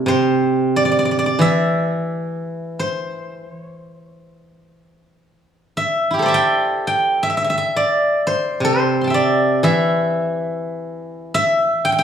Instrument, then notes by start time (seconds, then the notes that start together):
guzheng
Already playing: A3 C4 D4 E4 G4 A4 D5
0.06 C3 C5
0.76 D5
0.85 D5
0.92 D5
0.99 D5
1.05 D5
1.11 D5
1.19 D5
1.26 D5
1.39 E3 E5
2.79 C5
3.56 C#5
3.76 C5
3.99 C#5
4.19 C5
5.77 E5
6.11 E4 G4
6.19 A4 C5
6.26 D5 E5
6.34 G5
6.87 G5
7.23 E5
7.30 E5
7.37 E5
7.44 E5
7.50 E5
7.58 E5
7.76 D5
8.27 C5
8.60 C3
8.65 C5
9.01 A5 C6
9.07 E5 G5
9.14 D5
9.63 E3 E5
11.34 E5
11.85 G5
11.92 G5
11.99 G5